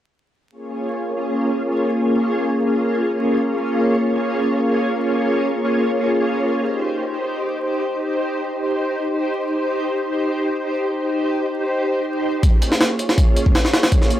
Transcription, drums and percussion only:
12.43 kick loud
12.43 closed hi-hat medium
12.62 closed hi-hat medium
12.72 snare soft
12.81 snare loud
12.81 closed hi-hat medium
12.99 closed hi-hat medium
13.09 snare soft
13.18 kick loud
13.18 closed hi-hat medium
13.36 closed hi-hat medium
13.46 kick medium
13.55 snare loud
13.55 closed hi-hat medium
13.65 snare medium
13.73 snare loud
13.73 closed hi-hat medium
13.83 snare loud
13.83 closed hi-hat medium
13.92 kick loud
13.92 closed hi-hat medium
14.02 snare soft
14.10 closed hi-hat medium

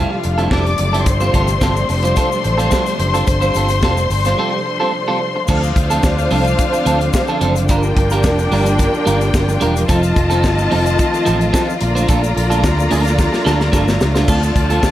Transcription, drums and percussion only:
0.23 closed hi-hat medium
0.38 closed hi-hat soft
0.51 kick loud
0.51 snare loud
0.66 closed hi-hat soft
0.78 closed hi-hat medium
0.94 closed hi-hat medium
1.06 kick loud
1.06 closed hi-hat medium
1.06 shaker medium
1.21 shaker medium
1.34 kick medium
1.34 closed hi-hat medium
1.34 shaker soft
1.47 closed hi-hat soft
1.47 shaker medium
1.61 kick loud
1.61 snare loud
1.61 shaker medium
1.76 closed hi-hat soft
1.76 shaker medium
1.89 open hi-hat medium
1.89 shaker medium
2.03 closed hi-hat medium
2.03 shaker medium
2.16 kick loud
2.16 closed hi-hat medium
2.16 shaker medium
2.32 shaker medium
2.44 closed hi-hat medium
2.59 closed hi-hat soft
2.59 shaker soft
2.71 kick loud
2.71 snare loud
2.71 shaker medium
2.86 closed hi-hat soft
2.86 shaker medium
3.00 closed hi-hat medium
3.14 closed hi-hat soft
3.14 shaker medium
3.27 kick loud
3.27 closed hi-hat medium
3.27 shaker medium
3.42 shaker medium
3.54 closed hi-hat medium
3.54 shaker medium
3.69 closed hi-hat soft
3.69 shaker medium
3.82 kick loud
3.82 snare loud
3.82 shaker medium
3.97 closed hi-hat soft
3.97 shaker medium
4.11 open hi-hat medium
4.11 shaker medium
4.25 snare soft
4.25 closed hi-hat soft
4.25 shaker medium
5.48 kick loud
5.48 crash medium
5.48 shaker medium
5.63 shaker medium
5.76 kick loud
5.76 closed hi-hat medium
5.90 closed hi-hat soft
5.90 shaker medium
6.03 kick loud
6.03 snare loud
6.03 shaker medium
6.18 closed hi-hat soft
6.18 shaker medium
6.31 open hi-hat medium
6.44 closed hi-hat soft
6.44 shaker medium
6.59 kick loud
6.59 closed hi-hat medium
6.59 shaker medium
6.73 closed hi-hat soft
6.73 shaker medium
6.86 closed hi-hat medium
6.86 shaker medium
7.00 closed hi-hat soft
7.00 shaker medium
7.13 kick loud
7.13 snare loud
7.13 shaker loud
7.27 shaker medium
7.41 closed hi-hat medium
7.56 closed hi-hat medium
7.56 shaker medium
7.69 kick loud
7.69 closed hi-hat medium
7.69 shaker medium
7.83 shaker medium
7.97 kick loud
7.97 closed hi-hat medium
8.10 closed hi-hat soft
8.10 shaker medium
8.23 kick loud
8.23 snare loud
8.23 shaker medium
8.39 closed hi-hat soft
8.39 shaker medium
8.52 open hi-hat medium
8.66 closed hi-hat medium
8.66 shaker medium
8.79 kick loud
8.79 closed hi-hat medium
8.79 shaker medium
8.94 shaker medium
9.07 closed hi-hat medium
9.07 shaker medium
9.21 closed hi-hat soft
9.21 shaker soft
9.34 kick loud
9.34 snare loud
9.34 shaker loud
9.49 closed hi-hat soft
9.49 shaker medium
9.61 closed hi-hat medium
9.76 closed hi-hat soft
9.76 shaker medium
9.89 kick loud
9.89 closed hi-hat medium
9.89 shaker medium
10.03 closed hi-hat soft
10.03 shaker medium
10.16 kick loud
10.16 closed hi-hat medium
10.30 closed hi-hat soft
10.30 shaker medium
10.44 kick loud
10.44 snare loud
10.44 shaker medium
10.58 closed hi-hat soft
10.58 shaker medium
10.71 open hi-hat medium
10.86 closed hi-hat medium
10.86 shaker medium
10.99 kick loud
10.99 closed hi-hat medium
10.99 shaker medium
11.14 closed hi-hat soft
11.14 shaker medium
11.26 closed hi-hat medium
11.26 shaker medium
11.41 closed hi-hat soft
11.41 shaker medium
11.54 kick loud
11.54 snare loud
11.54 shaker loud
11.70 shaker medium
11.81 closed hi-hat medium
11.96 closed hi-hat soft
11.96 shaker medium
12.08 kick loud
12.08 closed hi-hat medium
12.08 shaker medium
12.24 closed hi-hat soft
12.24 shaker medium
12.37 closed hi-hat medium
12.51 closed hi-hat soft
12.51 shaker medium
12.64 kick loud
12.64 snare loud
12.64 shaker medium
12.79 closed hi-hat soft
12.79 shaker medium
12.91 open hi-hat medium
12.91 shaker medium
13.05 snare soft
13.05 closed hi-hat soft
13.05 shaker medium
13.19 kick loud
13.19 snare medium
13.19 shaker medium
13.33 snare medium
13.33 shaker medium
13.47 snare medium
13.47 shaker medium
13.60 snare medium
13.60 shaker soft
13.73 kick loud
13.73 snare medium
13.73 shaker loud
13.88 snare medium
13.88 shaker medium
14.01 snare loud
14.01 shaker medium
14.16 snare medium
14.16 shaker medium
14.28 kick loud
14.28 crash medium
14.28 shaker medium
14.43 closed hi-hat soft
14.43 shaker medium
14.56 kick loud
14.56 closed hi-hat medium
14.70 closed hi-hat soft
14.70 shaker medium
14.83 kick loud
14.83 snare loud
14.83 shaker medium

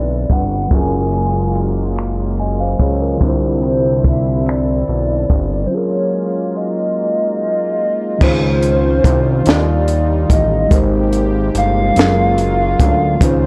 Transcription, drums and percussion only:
0.30 kick medium
0.30 closed hi-hat medium
0.71 kick loud
0.71 closed hi-hat medium
1.13 closed hi-hat soft
1.55 closed hi-hat medium
1.96 finger snap loud
1.96 closed hi-hat medium
2.37 closed hi-hat medium
2.79 kick medium
2.79 closed hi-hat medium
3.21 kick medium
3.21 closed hi-hat medium
3.62 closed hi-hat medium
4.04 kick medium
4.04 closed hi-hat medium
4.46 finger snap loud
4.46 closed hi-hat medium
4.88 closed hi-hat medium
5.30 kick medium
5.30 closed hi-hat medium
8.21 kick medium
8.21 crash medium
8.63 closed hi-hat medium
9.04 kick loud
9.04 closed hi-hat medium
9.46 snare loud
9.46 closed hi-hat medium
9.88 closed hi-hat medium
10.30 kick medium
10.30 closed hi-hat medium
10.71 kick loud
10.71 closed hi-hat medium
11.13 closed hi-hat medium
11.55 closed hi-hat medium
11.96 snare loud
11.96 closed hi-hat medium
12.38 closed hi-hat medium
12.80 kick medium
12.80 closed hi-hat medium
13.21 kick loud
13.21 closed hi-hat medium

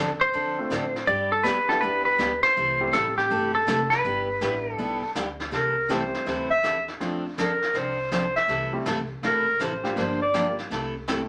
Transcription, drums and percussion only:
0.35 brush sweep soft
0.71 snare medium
0.71 hi-hat pedal medium
0.96 snare soft
1.08 brush sweep soft
1.45 snare medium
1.45 hi-hat pedal medium
1.70 snare soft
1.82 brush sweep soft
2.19 snare medium
2.19 hi-hat pedal medium
2.43 snare soft
2.56 brush sweep medium
2.93 snare medium
2.93 hi-hat pedal medium
3.18 snare soft
3.31 brush sweep medium
3.68 snare medium
3.68 hi-hat pedal medium
3.91 snare soft
4.04 brush sweep medium
4.41 snare medium
4.41 hi-hat pedal soft
4.79 brush sweep medium
5.15 snare medium
5.15 hi-hat pedal medium
5.40 snare soft
5.53 brush sweep soft
5.53 snare soft
5.90 snare medium
5.90 hi-hat pedal soft
6.14 snare soft
6.27 brush sweep medium
6.27 snare soft
6.64 snare medium
6.64 hi-hat pedal medium
6.88 snare soft
7.01 brush sweep medium
7.01 snare soft
7.38 snare medium
7.38 hi-hat pedal medium
7.62 snare soft
7.75 brush sweep soft
7.75 snare soft
8.12 snare medium
8.12 hi-hat pedal medium
8.36 snare soft
8.49 brush sweep soft
8.49 snare soft
8.86 snare medium
8.86 hi-hat pedal soft
9.23 brush sweep soft
9.23 snare soft
9.60 snare medium
9.60 hi-hat pedal medium
9.84 snare soft
9.97 brush sweep soft
9.97 snare soft
10.34 snare medium
10.34 hi-hat pedal soft
10.58 snare soft
10.71 brush sweep medium
10.71 snare soft
11.08 snare medium
11.08 hi-hat pedal medium

